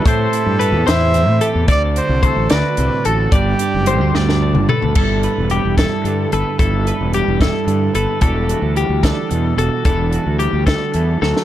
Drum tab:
CC |------------|------------|------------|x-----------|
HH |x-x-x-x-x-x-|x-x-x-x-x-x-|x-x-x-------|--x-x-x-x-x-|
SD |------o-----|------o-----|------oo----|------o-----|
T2 |------------|------------|---------o--|------------|
FT |------------|------------|----------oo|------------|
BD |o-----------|o---o-------|o-----------|o-----o-----|

CC |------------|------------|------------|
HH |x-x-x-x-x-x-|x-x-x-x-x-x-|x-x-x-x-x---|
SD |------o-----|------o-----|------o---oo|
T2 |------------|------------|------------|
FT |------------|------------|------------|
BD |o-----o-----|o-----o-----|o-----o-----|